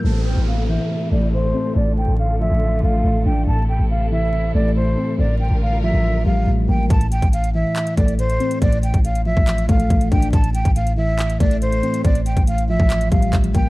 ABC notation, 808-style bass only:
X:1
M:4/4
L:1/16
Q:1/4=140
K:Aphr
V:1 name="808-style bass" clef=bass
A,,,3 A,,,4 z3 A,,,4 z2 | A,,,3 A,,,4 A,,,3 A,,,2 A,,,2 A,,,2 | A,,,3 A,,,6- A,,, A,,,4 z2 | A,,,3 A,,,4 A,,,3 A,,,2 A,,,2 A,,,2 |
A,,,3 A,,,4 z3 A,,,4 z2 | A,,,3 A,,,4 A,,,3 A,,,2 A,,,2 A,,,2 | A,,,3 A,,,6- A,,, A,,,4 z2 | A,,,3 A,,,4 A,,,3 A,,,2 A,,,2 A,,,2 |]